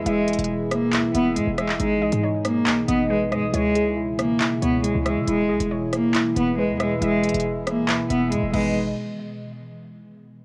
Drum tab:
CC |--------------------------------|--------------------------------|--------------------------------|--------------------------------|
HH |x---xxxx----x---x---x---x---x---|x-----x-----x---x---x-------x---|x---x-------x---x---x---x---x---|x-----x-----x---x---x-------x---|
CP |----------------x-------------x-|----------------x---------------|----------------x---------------|----------------x---------------|
SD |------------r---------------r---|------------r---------------r---|------------r---------------r---|------------r---------------r---|

CC |----------------------------x---|--------------------------------|
HH |x---xxxx----x---x---x---x-------|--------------------------------|
CP |----------------x---------------|--------------------------------|
SD |------------r-------------------|--------------------------------|